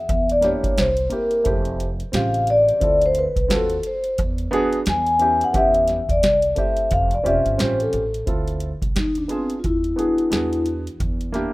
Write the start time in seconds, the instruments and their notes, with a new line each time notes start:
Already playing: vibraphone E5
0.09 upright bass E2, kick, closed hi-hat
0.29 vibraphone D5, closed hi-hat
0.41 grand piano A#3 D4 E4 G4, vibraphone C#5, snare, closed hi-hat
0.64 upright bass E2, kick, closed hi-hat
0.77 upright bass C2, vibraphone C5, snare, closed hi-hat
0.97 closed hi-hat
1.09 grand piano A#3 C4 E4 G4, closed hi-hat
1.13 vibraphone A#4
1.31 closed hi-hat
1.44 upright bass F1, grand piano A3 C4 E4 G4, kick, closed hi-hat
1.65 closed hi-hat
1.80 closed hi-hat
2.00 closed hi-hat
2.12 upright bass A1, grand piano C#3 C4 F4 G4, vibraphone F5, snare, closed hi-hat
2.34 closed hi-hat
2.47 vibraphone D5, closed hi-hat
2.69 closed hi-hat
2.80 upright bass D2, grand piano C4 E4 F4 A4, kick, closed hi-hat
3.02 closed hi-hat
3.06 vibraphone C5
3.15 closed hi-hat
3.19 vibraphone B4
3.36 upright bass C2, kick, closed hi-hat
3.48 upright bass D#2, grand piano C4 F4 F#4 A4, snare, closed hi-hat
3.54 vibraphone A4
3.70 closed hi-hat
3.83 vibraphone C5, closed hi-hat
4.04 closed hi-hat
4.18 upright bass E2, kick, closed hi-hat
4.38 closed hi-hat
4.51 grand piano B3 D4 F#4 G#4, closed hi-hat
4.73 closed hi-hat
4.86 upright bass E2, vibraphone G#5, snare, closed hi-hat
5.07 closed hi-hat
5.19 grand piano B3 C#4 E4 G4, closed hi-hat
5.41 vibraphone F#5, closed hi-hat
5.53 upright bass E2, grand piano B3 C#4 E4 G4, kick, closed hi-hat
5.58 vibraphone E5
5.74 closed hi-hat
5.88 snare, closed hi-hat
6.09 upright bass E2, vibraphone D5, kick, closed hi-hat
6.23 upright bass C2, snare, closed hi-hat
6.42 closed hi-hat
6.55 grand piano A3 C4 E4 G4, kick, closed hi-hat
6.59 vibraphone E5
6.77 closed hi-hat
6.91 upright bass F1, vibraphone F5, kick, closed hi-hat
7.11 vibraphone D5, closed hi-hat
7.23 upright bass E1, grand piano C4 C#4 F4 G4, vibraphone E5, closed hi-hat
7.46 upright bass G1, closed hi-hat
7.57 upright bass A1, grand piano C4 C#4 F4 G4, snare, closed hi-hat
7.61 vibraphone C5
7.80 vibraphone A4, closed hi-hat
7.93 upright bass A1, closed hi-hat
8.14 closed hi-hat
8.26 upright bass D2, grand piano C4 E4 F4 A4, kick, closed hi-hat
8.48 closed hi-hat
8.60 closed hi-hat
8.82 upright bass C2, kick, closed hi-hat
8.96 upright bass D#2, vibraphone D#4, snare, closed hi-hat
9.15 vibraphone D4, closed hi-hat
9.28 grand piano B3 D4 F4 G#4, vibraphone C4, closed hi-hat
9.50 closed hi-hat
9.60 vibraphone F4
9.64 upright bass E2, vibraphone E4, kick, closed hi-hat
9.84 closed hi-hat
9.96 grand piano B3 D4 F#4 G#4, closed hi-hat
10.18 closed hi-hat
10.30 upright bass E2, grand piano B3 D4 F#4 G#4, snare, closed hi-hat
10.53 closed hi-hat
10.66 closed hi-hat
10.87 closed hi-hat
11.00 upright bass E2, kick, closed hi-hat
11.21 closed hi-hat
11.32 grand piano A#3 D4 E4 G4, snare, closed hi-hat